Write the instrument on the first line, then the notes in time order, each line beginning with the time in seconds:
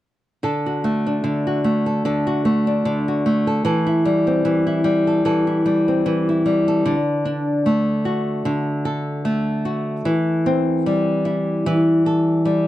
nylon-string guitar
0.43 D3 A4
0.66 F#4
0.84 A3
1.06 D4
1.24 D3
1.47 F#4
1.64 A3
1.86 A4
2.05 D3 A4
2.27 F#4
2.45 A3
2.67 D4
2.85 D3
3.08 F#4
3.26 A3
3.47 A4
3.65 E3 A4
3.87 E4
4.05 G3
4.27 C4
4.45 E3
4.67 E4
4.84 G3
5.07 A4
5.25 E3 A4
5.47 E4
5.66 G3
5.88 C4
6.06 E3
6.29 E4
6.46 G3
6.68 A4
6.86 D3
7.25 D4
7.66 A3
8.05 F#4
8.45 D3
8.85 A4
9.25 A3
9.65 F#4
10.05 E3
10.46 C4
10.86 G3
11.25 E4
11.66 E3
12.06 A4
12.45 G3